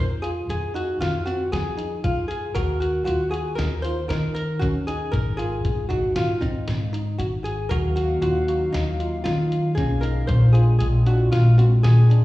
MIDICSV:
0, 0, Header, 1, 6, 480
1, 0, Start_track
1, 0, Tempo, 515907
1, 2377, Time_signature, 5, 2, 24, 8
1, 11394, End_track
2, 0, Start_track
2, 0, Title_t, "Hollow-body jazz guitar"
2, 0, Program_c, 0, 26
2, 206, Note_on_c, 0, 68, 85
2, 272, Note_off_c, 0, 68, 0
2, 465, Note_on_c, 0, 68, 84
2, 697, Note_off_c, 0, 68, 0
2, 701, Note_on_c, 0, 66, 80
2, 923, Note_off_c, 0, 66, 0
2, 936, Note_on_c, 0, 65, 85
2, 1165, Note_off_c, 0, 65, 0
2, 1168, Note_on_c, 0, 66, 81
2, 1413, Note_off_c, 0, 66, 0
2, 1416, Note_on_c, 0, 68, 96
2, 1894, Note_off_c, 0, 68, 0
2, 1898, Note_on_c, 0, 65, 86
2, 2117, Note_off_c, 0, 65, 0
2, 2121, Note_on_c, 0, 68, 82
2, 2369, Note_on_c, 0, 70, 93
2, 2377, Note_off_c, 0, 68, 0
2, 2608, Note_on_c, 0, 66, 77
2, 2620, Note_off_c, 0, 70, 0
2, 2828, Note_off_c, 0, 66, 0
2, 2839, Note_on_c, 0, 66, 84
2, 3071, Note_off_c, 0, 66, 0
2, 3076, Note_on_c, 0, 68, 79
2, 3307, Note_on_c, 0, 70, 86
2, 3334, Note_off_c, 0, 68, 0
2, 3553, Note_off_c, 0, 70, 0
2, 3557, Note_on_c, 0, 72, 88
2, 3801, Note_off_c, 0, 72, 0
2, 3805, Note_on_c, 0, 70, 95
2, 4033, Note_off_c, 0, 70, 0
2, 4044, Note_on_c, 0, 70, 90
2, 4275, Note_on_c, 0, 66, 82
2, 4298, Note_off_c, 0, 70, 0
2, 4342, Note_off_c, 0, 66, 0
2, 4531, Note_on_c, 0, 68, 85
2, 4760, Note_on_c, 0, 70, 95
2, 4782, Note_off_c, 0, 68, 0
2, 4997, Note_on_c, 0, 68, 84
2, 5016, Note_off_c, 0, 70, 0
2, 5474, Note_off_c, 0, 68, 0
2, 5478, Note_on_c, 0, 66, 72
2, 5725, Note_off_c, 0, 66, 0
2, 5729, Note_on_c, 0, 65, 84
2, 5962, Note_on_c, 0, 63, 83
2, 5981, Note_off_c, 0, 65, 0
2, 6685, Note_on_c, 0, 66, 76
2, 6711, Note_off_c, 0, 63, 0
2, 6751, Note_off_c, 0, 66, 0
2, 6924, Note_on_c, 0, 68, 74
2, 7157, Note_on_c, 0, 70, 93
2, 7178, Note_off_c, 0, 68, 0
2, 7225, Note_off_c, 0, 70, 0
2, 7405, Note_on_c, 0, 66, 80
2, 7637, Note_off_c, 0, 66, 0
2, 7648, Note_on_c, 0, 66, 81
2, 8118, Note_on_c, 0, 63, 79
2, 8148, Note_off_c, 0, 66, 0
2, 8596, Note_on_c, 0, 65, 85
2, 8623, Note_off_c, 0, 63, 0
2, 9067, Note_off_c, 0, 65, 0
2, 9071, Note_on_c, 0, 68, 85
2, 9312, Note_on_c, 0, 70, 76
2, 9332, Note_off_c, 0, 68, 0
2, 9548, Note_off_c, 0, 70, 0
2, 9559, Note_on_c, 0, 72, 91
2, 9794, Note_on_c, 0, 68, 80
2, 9816, Note_off_c, 0, 72, 0
2, 10026, Note_off_c, 0, 68, 0
2, 10037, Note_on_c, 0, 68, 80
2, 10104, Note_off_c, 0, 68, 0
2, 10298, Note_on_c, 0, 66, 76
2, 10526, Note_off_c, 0, 66, 0
2, 10529, Note_on_c, 0, 65, 83
2, 10770, Note_off_c, 0, 65, 0
2, 10774, Note_on_c, 0, 66, 79
2, 10840, Note_off_c, 0, 66, 0
2, 11010, Note_on_c, 0, 68, 93
2, 11394, Note_off_c, 0, 68, 0
2, 11394, End_track
3, 0, Start_track
3, 0, Title_t, "Tine electric piano"
3, 0, Program_c, 1, 4
3, 212, Note_on_c, 1, 65, 69
3, 489, Note_off_c, 1, 65, 0
3, 691, Note_on_c, 1, 63, 66
3, 968, Note_off_c, 1, 63, 0
3, 1178, Note_on_c, 1, 60, 67
3, 1453, Note_off_c, 1, 60, 0
3, 1653, Note_on_c, 1, 63, 64
3, 1929, Note_off_c, 1, 63, 0
3, 2375, Note_on_c, 1, 66, 84
3, 2651, Note_off_c, 1, 66, 0
3, 2850, Note_on_c, 1, 65, 71
3, 2989, Note_off_c, 1, 65, 0
3, 3088, Note_on_c, 1, 66, 67
3, 3228, Note_off_c, 1, 66, 0
3, 3334, Note_on_c, 1, 63, 78
3, 3472, Note_off_c, 1, 63, 0
3, 3579, Note_on_c, 1, 65, 63
3, 3716, Note_off_c, 1, 65, 0
3, 3822, Note_on_c, 1, 63, 77
3, 4096, Note_off_c, 1, 63, 0
3, 4293, Note_on_c, 1, 61, 74
3, 4431, Note_off_c, 1, 61, 0
3, 4538, Note_on_c, 1, 63, 67
3, 4813, Note_off_c, 1, 63, 0
3, 5011, Note_on_c, 1, 65, 67
3, 5288, Note_off_c, 1, 65, 0
3, 5488, Note_on_c, 1, 63, 67
3, 5766, Note_off_c, 1, 63, 0
3, 5968, Note_on_c, 1, 60, 66
3, 6246, Note_off_c, 1, 60, 0
3, 6447, Note_on_c, 1, 63, 71
3, 6725, Note_off_c, 1, 63, 0
3, 7173, Note_on_c, 1, 66, 85
3, 7450, Note_off_c, 1, 66, 0
3, 7647, Note_on_c, 1, 65, 69
3, 7788, Note_off_c, 1, 65, 0
3, 7896, Note_on_c, 1, 66, 68
3, 8034, Note_off_c, 1, 66, 0
3, 8138, Note_on_c, 1, 63, 77
3, 8276, Note_off_c, 1, 63, 0
3, 8375, Note_on_c, 1, 65, 65
3, 8513, Note_off_c, 1, 65, 0
3, 8611, Note_on_c, 1, 63, 77
3, 8888, Note_off_c, 1, 63, 0
3, 9096, Note_on_c, 1, 61, 75
3, 9234, Note_off_c, 1, 61, 0
3, 9330, Note_on_c, 1, 63, 68
3, 9607, Note_off_c, 1, 63, 0
3, 9810, Note_on_c, 1, 65, 69
3, 10088, Note_off_c, 1, 65, 0
3, 10293, Note_on_c, 1, 62, 64
3, 10570, Note_off_c, 1, 62, 0
3, 10774, Note_on_c, 1, 60, 68
3, 11050, Note_off_c, 1, 60, 0
3, 11259, Note_on_c, 1, 62, 69
3, 11394, Note_off_c, 1, 62, 0
3, 11394, End_track
4, 0, Start_track
4, 0, Title_t, "Analog synth pad"
4, 0, Program_c, 2, 89
4, 7172, Note_on_c, 2, 54, 68
4, 7173, Note_on_c, 2, 58, 61
4, 7176, Note_on_c, 2, 63, 61
4, 7176, Note_on_c, 2, 77, 76
4, 9538, Note_off_c, 2, 54, 0
4, 9539, Note_off_c, 2, 58, 0
4, 9540, Note_off_c, 2, 63, 0
4, 9540, Note_off_c, 2, 77, 0
4, 9573, Note_on_c, 2, 56, 70
4, 9574, Note_on_c, 2, 60, 61
4, 9577, Note_on_c, 2, 62, 64
4, 9577, Note_on_c, 2, 65, 76
4, 11394, Note_off_c, 2, 56, 0
4, 11394, Note_off_c, 2, 60, 0
4, 11394, Note_off_c, 2, 62, 0
4, 11394, Note_off_c, 2, 65, 0
4, 11394, End_track
5, 0, Start_track
5, 0, Title_t, "Upright bass"
5, 0, Program_c, 3, 32
5, 0, Note_on_c, 3, 41, 91
5, 421, Note_off_c, 3, 41, 0
5, 459, Note_on_c, 3, 41, 84
5, 901, Note_off_c, 3, 41, 0
5, 940, Note_on_c, 3, 41, 77
5, 1382, Note_off_c, 3, 41, 0
5, 1420, Note_on_c, 3, 53, 88
5, 1862, Note_off_c, 3, 53, 0
5, 1901, Note_on_c, 3, 41, 76
5, 2342, Note_off_c, 3, 41, 0
5, 2378, Note_on_c, 3, 39, 89
5, 2820, Note_off_c, 3, 39, 0
5, 2855, Note_on_c, 3, 39, 78
5, 3299, Note_off_c, 3, 39, 0
5, 3334, Note_on_c, 3, 39, 76
5, 3778, Note_off_c, 3, 39, 0
5, 3814, Note_on_c, 3, 51, 90
5, 4259, Note_off_c, 3, 51, 0
5, 4299, Note_on_c, 3, 39, 81
5, 4741, Note_off_c, 3, 39, 0
5, 4775, Note_on_c, 3, 32, 91
5, 5219, Note_off_c, 3, 32, 0
5, 5254, Note_on_c, 3, 32, 83
5, 5699, Note_off_c, 3, 32, 0
5, 5732, Note_on_c, 3, 32, 82
5, 6178, Note_off_c, 3, 32, 0
5, 6212, Note_on_c, 3, 44, 85
5, 6658, Note_off_c, 3, 44, 0
5, 6691, Note_on_c, 3, 32, 76
5, 7137, Note_off_c, 3, 32, 0
5, 7174, Note_on_c, 3, 39, 92
5, 7619, Note_off_c, 3, 39, 0
5, 7646, Note_on_c, 3, 39, 82
5, 8095, Note_off_c, 3, 39, 0
5, 8132, Note_on_c, 3, 39, 78
5, 8578, Note_off_c, 3, 39, 0
5, 8611, Note_on_c, 3, 51, 92
5, 9057, Note_off_c, 3, 51, 0
5, 9093, Note_on_c, 3, 35, 79
5, 9538, Note_off_c, 3, 35, 0
5, 9570, Note_on_c, 3, 34, 88
5, 10017, Note_off_c, 3, 34, 0
5, 10058, Note_on_c, 3, 34, 84
5, 10501, Note_off_c, 3, 34, 0
5, 10539, Note_on_c, 3, 34, 83
5, 10982, Note_off_c, 3, 34, 0
5, 11016, Note_on_c, 3, 46, 89
5, 11394, Note_off_c, 3, 46, 0
5, 11394, End_track
6, 0, Start_track
6, 0, Title_t, "Drums"
6, 222, Note_on_c, 9, 42, 53
6, 315, Note_off_c, 9, 42, 0
6, 466, Note_on_c, 9, 42, 73
6, 559, Note_off_c, 9, 42, 0
6, 708, Note_on_c, 9, 42, 52
6, 801, Note_off_c, 9, 42, 0
6, 948, Note_on_c, 9, 38, 99
6, 948, Note_on_c, 9, 42, 75
6, 1041, Note_off_c, 9, 38, 0
6, 1041, Note_off_c, 9, 42, 0
6, 1184, Note_on_c, 9, 42, 54
6, 1277, Note_off_c, 9, 42, 0
6, 1426, Note_on_c, 9, 38, 97
6, 1426, Note_on_c, 9, 42, 75
6, 1519, Note_off_c, 9, 38, 0
6, 1519, Note_off_c, 9, 42, 0
6, 1661, Note_on_c, 9, 42, 54
6, 1754, Note_off_c, 9, 42, 0
6, 1899, Note_on_c, 9, 42, 85
6, 1901, Note_on_c, 9, 36, 98
6, 1992, Note_off_c, 9, 42, 0
6, 1994, Note_off_c, 9, 36, 0
6, 2147, Note_on_c, 9, 42, 60
6, 2240, Note_off_c, 9, 42, 0
6, 2377, Note_on_c, 9, 42, 80
6, 2380, Note_on_c, 9, 36, 99
6, 2470, Note_off_c, 9, 42, 0
6, 2473, Note_off_c, 9, 36, 0
6, 2623, Note_on_c, 9, 42, 60
6, 2716, Note_off_c, 9, 42, 0
6, 2860, Note_on_c, 9, 42, 76
6, 2953, Note_off_c, 9, 42, 0
6, 3105, Note_on_c, 9, 42, 53
6, 3198, Note_off_c, 9, 42, 0
6, 3338, Note_on_c, 9, 38, 100
6, 3338, Note_on_c, 9, 42, 76
6, 3431, Note_off_c, 9, 38, 0
6, 3431, Note_off_c, 9, 42, 0
6, 3577, Note_on_c, 9, 42, 53
6, 3670, Note_off_c, 9, 42, 0
6, 3818, Note_on_c, 9, 38, 97
6, 3818, Note_on_c, 9, 42, 69
6, 3911, Note_off_c, 9, 38, 0
6, 3911, Note_off_c, 9, 42, 0
6, 4060, Note_on_c, 9, 42, 52
6, 4153, Note_off_c, 9, 42, 0
6, 4298, Note_on_c, 9, 36, 101
6, 4300, Note_on_c, 9, 42, 73
6, 4391, Note_off_c, 9, 36, 0
6, 4393, Note_off_c, 9, 42, 0
6, 4540, Note_on_c, 9, 42, 53
6, 4633, Note_off_c, 9, 42, 0
6, 4777, Note_on_c, 9, 36, 96
6, 4778, Note_on_c, 9, 42, 77
6, 4870, Note_off_c, 9, 36, 0
6, 4871, Note_off_c, 9, 42, 0
6, 5018, Note_on_c, 9, 42, 57
6, 5111, Note_off_c, 9, 42, 0
6, 5255, Note_on_c, 9, 42, 75
6, 5256, Note_on_c, 9, 36, 100
6, 5348, Note_off_c, 9, 42, 0
6, 5349, Note_off_c, 9, 36, 0
6, 5493, Note_on_c, 9, 42, 53
6, 5494, Note_on_c, 9, 36, 67
6, 5586, Note_off_c, 9, 42, 0
6, 5587, Note_off_c, 9, 36, 0
6, 5730, Note_on_c, 9, 38, 102
6, 5730, Note_on_c, 9, 42, 85
6, 5823, Note_off_c, 9, 38, 0
6, 5823, Note_off_c, 9, 42, 0
6, 5975, Note_on_c, 9, 36, 65
6, 5975, Note_on_c, 9, 42, 60
6, 6068, Note_off_c, 9, 36, 0
6, 6068, Note_off_c, 9, 42, 0
6, 6212, Note_on_c, 9, 38, 98
6, 6212, Note_on_c, 9, 42, 71
6, 6305, Note_off_c, 9, 38, 0
6, 6305, Note_off_c, 9, 42, 0
6, 6459, Note_on_c, 9, 42, 55
6, 6552, Note_off_c, 9, 42, 0
6, 6695, Note_on_c, 9, 42, 80
6, 6788, Note_off_c, 9, 42, 0
6, 6936, Note_on_c, 9, 42, 54
6, 7029, Note_off_c, 9, 42, 0
6, 7170, Note_on_c, 9, 42, 78
6, 7174, Note_on_c, 9, 36, 100
6, 7263, Note_off_c, 9, 42, 0
6, 7267, Note_off_c, 9, 36, 0
6, 7414, Note_on_c, 9, 42, 55
6, 7507, Note_off_c, 9, 42, 0
6, 7651, Note_on_c, 9, 42, 70
6, 7744, Note_off_c, 9, 42, 0
6, 7893, Note_on_c, 9, 42, 52
6, 7986, Note_off_c, 9, 42, 0
6, 8135, Note_on_c, 9, 38, 97
6, 8135, Note_on_c, 9, 42, 72
6, 8228, Note_off_c, 9, 38, 0
6, 8228, Note_off_c, 9, 42, 0
6, 8374, Note_on_c, 9, 42, 51
6, 8467, Note_off_c, 9, 42, 0
6, 8612, Note_on_c, 9, 38, 94
6, 8612, Note_on_c, 9, 42, 71
6, 8705, Note_off_c, 9, 38, 0
6, 8705, Note_off_c, 9, 42, 0
6, 8857, Note_on_c, 9, 42, 55
6, 8950, Note_off_c, 9, 42, 0
6, 9095, Note_on_c, 9, 36, 99
6, 9096, Note_on_c, 9, 38, 32
6, 9096, Note_on_c, 9, 42, 80
6, 9188, Note_off_c, 9, 36, 0
6, 9189, Note_off_c, 9, 38, 0
6, 9189, Note_off_c, 9, 42, 0
6, 9334, Note_on_c, 9, 42, 54
6, 9427, Note_off_c, 9, 42, 0
6, 9571, Note_on_c, 9, 42, 76
6, 9574, Note_on_c, 9, 36, 105
6, 9664, Note_off_c, 9, 42, 0
6, 9667, Note_off_c, 9, 36, 0
6, 9815, Note_on_c, 9, 42, 57
6, 9908, Note_off_c, 9, 42, 0
6, 10053, Note_on_c, 9, 42, 82
6, 10146, Note_off_c, 9, 42, 0
6, 10295, Note_on_c, 9, 42, 57
6, 10388, Note_off_c, 9, 42, 0
6, 10537, Note_on_c, 9, 38, 99
6, 10537, Note_on_c, 9, 42, 83
6, 10630, Note_off_c, 9, 38, 0
6, 10630, Note_off_c, 9, 42, 0
6, 10783, Note_on_c, 9, 42, 59
6, 10876, Note_off_c, 9, 42, 0
6, 11020, Note_on_c, 9, 38, 100
6, 11020, Note_on_c, 9, 42, 77
6, 11113, Note_off_c, 9, 38, 0
6, 11113, Note_off_c, 9, 42, 0
6, 11269, Note_on_c, 9, 42, 56
6, 11362, Note_off_c, 9, 42, 0
6, 11394, End_track
0, 0, End_of_file